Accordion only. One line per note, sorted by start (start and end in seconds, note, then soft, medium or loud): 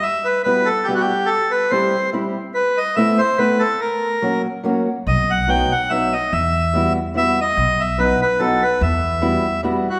0.03 0.27 E5 medium
0.25 0.42 B4 medium
0.43 0.69 B4 medium
0.65 0.87 A4 medium
0.84 0.94 G4 medium
0.95 1.02 F#4 medium
1.01 1.30 G4 medium
1.26 1.52 A4 medium
1.51 1.72 B4 medium
1.70 2.10 C5 medium
2.55 2.79 B4 medium
2.77 2.96 D#5 medium
2.96 3.20 E5 medium
3.18 3.39 C5 medium
3.38 3.62 B4 medium
3.59 3.80 A4 medium
3.81 4.42 A#4 medium
5.08 5.31 D#5 medium
5.30 5.50 F#5 medium
5.49 5.73 G5 medium
5.72 5.91 F#5 medium
5.90 6.14 E5 medium
6.13 6.33 D#5 medium
6.33 6.93 E5 medium
7.17 7.40 E5 loud
7.41 7.82 D#5 medium
7.80 7.99 E5 medium
7.99 8.21 B4 medium
8.22 8.41 B4 medium
8.39 8.63 A4 medium
8.63 8.82 B4 medium
8.82 9.61 E5 medium
9.90 10.00 F#4 medium